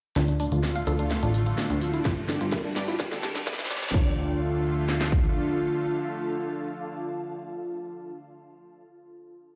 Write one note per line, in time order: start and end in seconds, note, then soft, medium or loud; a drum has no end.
0.16 0.47 D2 loud
0.16 3.93 D3 medium
0.16 3.90 D3 medium
0.16 2.03 A3 medium
0.16 3.93 A3 medium
0.16 3.93 D4 loud
0.16 0.22 D4 medium
0.16 0.24 F4 loud
0.16 2.03 F4 medium
0.16 snare soft
0.16 closed hi-hat medium
0.16 riser medium
0.16 cabasa medium
0.28 0.36 A3 medium
0.28 0.31 D4 medium
0.28 closed hi-hat medium
0.28 cabasa soft
0.40 0.48 A3 medium
0.40 0.48 D4 loud
0.40 open hi-hat loud
0.40 cabasa loud
0.52 0.82 D2 medium
0.52 0.59 F4 medium
0.52 0.55 F4 medium
0.52 2.05 A4 medium
0.52 closed hi-hat medium
0.52 cabasa soft
0.63 0.71 A3 medium
0.63 2.05 A5 medium
0.63 snare medium
0.63 closed hi-hat medium
0.63 cabasa soft
0.76 0.83 A3 medium
0.76 0.79 F5 loud
0.76 closed hi-hat medium
0.76 cabasa soft
0.86 1.18 D2 loud
0.86 0.95 F4 loud
0.86 0.95 A4 loud
0.86 open hi-hat loud
0.86 cabasa medium
0.99 1.07 A3 medium
0.99 1.04 D4 medium
0.99 2.81 F5 medium
0.99 closed hi-hat medium
0.99 cabasa soft
1.11 1.19 A3 medium
1.11 1.16 A3 medium
1.11 snare medium
1.11 closed hi-hat medium
1.11 cabasa medium
1.22 1.53 A1 medium
1.22 1.28 D4 loud
1.22 1.30 F4 medium
1.22 closed hi-hat medium
1.22 cabasa soft
1.34 1.42 A3 medium
1.34 open hi-hat loud
1.34 cabasa loud
1.46 1.54 F4 medium
1.46 1.49 F4 medium
1.46 closed hi-hat medium
1.46 cabasa soft
1.58 1.66 A3 medium
1.58 snare medium
1.58 closed hi-hat medium
1.58 cabasa medium
1.70 2.00 D2 medium
1.70 1.78 A3 medium
1.70 closed hi-hat medium
1.70 cabasa soft
1.81 1.90 F4 medium
1.81 open hi-hat loud
1.81 cabasa medium
1.93 2.01 A3 medium
1.93 1.97 E4 loud
1.93 closed hi-hat medium
1.93 cabasa soft
2.05 2.36 G1 loud
2.05 2.10 F4 medium
2.05 2.13 F4 medium
2.05 3.92 G4 medium
2.05 kick loud
2.05 snare medium
2.05 closed hi-hat medium
2.05 cabasa medium
2.17 2.25 G3 medium
2.17 closed hi-hat medium
2.17 cabasa soft
2.29 2.34 D4 medium
2.29 2.37 A4 medium
2.29 snare medium
2.29 open hi-hat loud
2.29 cabasa loud
2.36 3.94 G5 medium
2.41 2.71 G1 medium
2.41 2.48 G3 medium
2.41 2.44 F4 medium
2.41 closed hi-hat medium
2.41 cabasa soft
2.52 2.58 A3 medium
2.52 2.60 A#4 medium
2.52 kick loud
2.52 snare medium
2.52 closed hi-hat medium
2.52 cabasa medium
2.65 2.72 G3 medium
2.65 2.70 D4 medium
2.65 closed hi-hat medium
2.65 cabasa soft
2.76 3.07 G1 loud
2.76 2.84 G3 medium
2.76 2.79 D5 medium
2.76 snare medium
2.76 open hi-hat loud
2.76 cabasa loud
2.88 2.91 E4 loud
2.88 2.96 F4 medium
2.88 3.94 A#5 medium
2.88 open hi-hat medium
2.88 cabasa soft
2.99 3.08 G3 medium
2.99 kick loud
2.99 snare medium
2.99 closed hi-hat medium
2.99 cabasa medium
3.12 3.42 D2 medium
3.12 3.19 G3 medium
3.12 3.17 A4 medium
3.12 snare medium
3.12 closed hi-hat medium
3.12 cabasa soft
3.23 3.31 D4 medium
3.23 3.31 G4 loud
3.23 snare medium
3.23 open hi-hat loud
3.23 cabasa medium
3.35 3.43 G3 medium
3.35 3.40 D4 medium
3.35 snare medium
3.35 closed hi-hat medium
3.35 cabasa soft
3.47 3.55 G3 medium
3.47 3.52 A3 medium
3.47 kick loud
3.47 snare loud
3.47 closed hi-hat medium
3.47 cabasa soft
3.53 snare medium
3.59 3.89 G1 medium
3.59 snare loud
3.59 closed hi-hat medium
3.59 cabasa soft
3.65 snare loud
3.71 3.79 G3 medium
3.71 3.74 D5 medium
3.71 snare loud
3.71 open hi-hat loud
3.71 cabasa loud
3.77 snare medium
3.83 3.90 G3 medium
3.83 snare medium
3.83 closed hi-hat medium
3.83 cabasa soft
3.88 snare loud
3.94 5.32 D2 loud
3.94 8.12 D3 medium
3.94 8.12 A3 medium
3.94 4.16 D4 loud
3.94 8.12 D4 medium
3.94 8.12 F4 loud
3.94 8.12 F4 medium
3.94 kick loud
4.01 8.19 A4 medium
4.09 8.26 F5 medium
4.15 8.33 A5 medium
4.89 snare medium
5.01 snare medium
5.12 kick loud